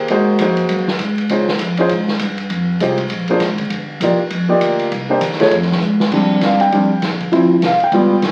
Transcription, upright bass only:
0.10 0.39 G#2 medium
0.40 0.69 F2 medium
0.70 0.99 F#2 medium
1.00 1.29 G#2 medium
1.29 1.59 C#2 medium
1.61 1.90 F2 medium
1.91 2.20 G#2 medium
2.21 2.50 G2 medium
2.50 2.79 F2 medium
2.81 3.10 C2 medium
3.11 3.40 A#1 medium
3.40 3.70 G#1 medium
3.70 4.00 G1 medium
4.00 4.17 A#1 loud
4.30 4.60 F2 medium
4.60 4.90 D2 medium
4.91 5.20 C2 medium
5.21 5.50 D#2 loud
5.51 5.80 F2 medium
5.82 6.11 G#2 medium
6.12 6.41 F2 medium
6.42 6.59 G2 medium
6.72 7.01 F2 medium
7.02 7.31 A#1 medium
7.32 7.61 D2 medium
7.61 7.79 C2 medium
7.80 muted upright bass stroke soft
7.92 8.21 C#2 medium
8.22 8.32 A#1 medium

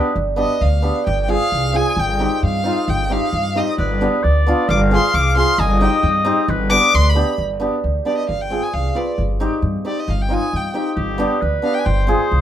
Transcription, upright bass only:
0.16 0.43 G1 medium
0.61 0.88 D2 medium
1.07 1.34 G1 loud
1.52 1.79 C2 medium
1.97 2.24 G1 loud
2.43 2.70 G2 medium
2.88 3.15 G1 loud
3.33 3.60 G2 medium
3.78 4.06 G1 loud
4.24 4.51 D2 medium
4.69 4.96 G1 loud
5.14 5.41 C2 medium
5.58 5.85 G1 loud
6.03 6.30 G2 loud
6.48 6.75 G1 loud
6.94 7.21 D2 loud
7.38 7.65 G1 medium
7.84 7.97 D2 medium
8.29 8.56 G1 medium
8.74 8.87 C2 medium
9.18 9.45 G1 medium
9.62 9.76 G2 medium
10.08 10.35 G1 medium
10.53 10.66 G2 medium
10.97 11.23 G1 medium
11.42 11.55 D2 medium
11.86 12.13 G1 loud
12.31 12.41 C2 medium

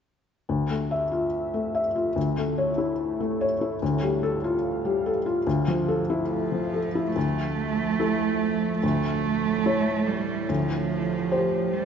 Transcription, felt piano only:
0.49 2.12 D2 soft
0.70 1.04 A3 soft
0.91 1.24 E5 soft
1.12 1.78 F4 soft
1.54 1.87 A3 soft
1.75 2.07 E5 soft
1.96 2.16 F4 soft
2.16 3.77 D2 soft
2.38 2.70 A3 soft
2.58 2.91 C#5 soft
2.78 3.44 E4 soft
3.20 3.53 A3 soft
3.41 3.73 C#5 soft
3.61 3.81 E4 soft
3.82 5.42 D2 soft
4.02 4.35 G3 soft
4.23 4.55 A4 soft
4.44 5.09 F4 soft
4.85 5.17 G3 soft
5.06 5.38 A4 soft
5.26 5.46 F4 soft
5.47 7.12 D2 soft
5.68 6.01 F3 soft
5.88 6.22 A4 soft
6.10 6.78 E4 soft
6.52 6.86 F3 soft
6.74 7.08 A4 soft
6.95 7.16 E4 soft
7.16 8.79 D2 soft
8.00 8.79 E4 soft
8.00 8.79 A4 soft
8.83 10.45 D2 soft
9.66 10.45 E4 soft
9.66 10.45 C#5 soft
10.49 11.85 D2 soft
11.31 11.85 G4 soft
11.31 11.85 C5 soft

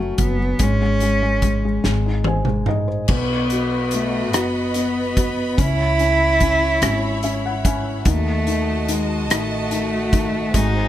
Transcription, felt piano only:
0.00 0.18 F#3 medium
0.00 0.57 C#4 soft
0.18 0.37 F#3 soft
0.39 0.59 F#3 soft
0.59 0.80 G#3 medium
0.82 1.01 G#3 soft
1.02 1.21 G#3 soft
1.22 1.42 G#3 soft
1.44 1.63 G#3 soft
1.65 1.83 G#3 soft
1.85 2.46 G#3 soft
2.06 2.66 D#4 soft
2.27 2.86 C5 soft
2.27 2.65 G#5 soft
2.47 3.08 G#3 soft
2.68 3.08 D#4 soft
2.68 3.07 D#5 soft
2.88 3.08 C5 soft
3.10 3.92 B3 soft
3.52 4.33 F#4 soft
3.94 4.74 B3 soft
4.35 5.15 F#4 soft
4.76 5.56 B3 soft
5.17 5.57 F#4 soft
5.57 5.98 C#4 soft
6.00 6.41 C#4 soft
6.42 6.81 C#4 soft
6.83 7.22 C#4 soft
7.24 7.65 C#4 soft
7.24 7.43 E5 medium
7.46 7.64 F#5 medium
7.66 8.05 C#4 soft
7.66 8.04 G#5 medium
8.07 8.46 D#3 medium
8.47 8.87 D#3 soft
8.88 9.28 D#3 medium
9.30 9.70 D#3 soft
9.71 10.11 D#3 soft
10.13 10.53 D#3 soft
10.54 10.88 G#3 medium

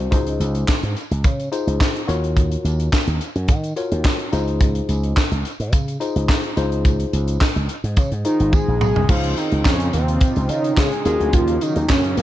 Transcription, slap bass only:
0.12 0.36 C#2 loud
0.40 0.63 C#2 loud
0.83 0.94 G#2 medium
1.11 1.22 C#2 loud
1.24 1.48 C#3 loud
1.67 1.78 C#2 medium
2.08 2.55 D#2 medium
2.64 2.88 D#2 loud
3.07 3.18 D#2 medium
3.35 3.50 F#2 loud
3.49 3.72 D#3 loud
3.92 4.03 D#2 medium
4.33 4.80 C#2 medium
4.89 5.12 C#2 loud
5.31 5.43 C#2 medium
5.60 5.73 G#2 medium
5.73 5.96 C#3 loud
6.16 6.27 C#2 medium
6.57 7.04 C#2 loud
7.13 7.37 C#2 loud
7.56 7.67 C#2 medium
7.84 7.95 G#2 medium
7.97 8.10 C#3 loud
8.12 8.23 G#2 medium
8.40 8.51 G#1 medium
8.68 8.79 A#1 medium
8.81 8.94 B1 medium
8.96 9.07 C2 medium
9.09 9.33 C#2 loud
9.52 9.63 C#2 medium
9.65 9.89 F2 medium
9.93 10.17 D#2 loud
10.36 10.47 C#2 medium
10.50 10.73 C#3 loud
10.77 10.90 C#3 loud
11.05 11.18 D#2 loud
11.20 11.31 D2 medium
11.33 11.57 D#2 loud
11.76 11.87 D#2 medium
11.90 12.13 F#2 medium
12.17 12.22 F2 loud

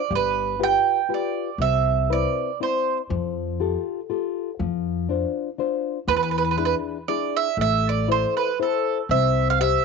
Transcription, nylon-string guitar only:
0.10 0.58 G3 medium
0.59 0.99 F4 soft
0.59 0.99 G4 soft
0.59 1.00 B4 soft
1.09 1.49 F4 soft
1.09 1.49 G4 soft
1.09 1.49 B4 soft
1.60 2.08 C3 medium
2.10 2.50 C4 soft
2.10 2.50 E4 soft
2.10 2.50 B4 soft
2.60 3.00 C4 soft
2.60 3.00 E4 soft
2.60 3.01 C5 soft
3.09 3.58 F3 soft
3.60 4.00 F4 soft
3.60 4.00 G4 soft
3.60 4.00 A4 soft
4.10 4.49 F4 soft
4.10 4.50 G4 soft
4.10 4.50 A4 soft
4.59 5.07 F3 medium
5.09 5.48 D4 soft
5.09 5.49 F4 soft
5.09 5.49 C5 soft
5.58 5.98 D4 soft
5.58 5.98 F4 soft
5.58 5.98 C5 soft
6.08 6.56 E3 medium
6.57 6.97 D4 soft
6.57 6.98 E4 soft
6.57 6.97 G#4 soft
7.08 7.48 D4 soft
7.08 7.48 E4 soft
7.08 7.48 G#4 soft
7.58 8.06 A3 medium
8.08 8.48 E4 soft
8.08 8.49 A4 soft
8.08 8.49 C5 soft
8.60 9.00 E4 soft
8.60 9.00 A4 soft
8.60 9.00 C5 soft
9.11 9.59 C4 medium
9.61 9.85 G4 soft
9.61 9.85 C5 soft
9.61 9.85 E5 soft

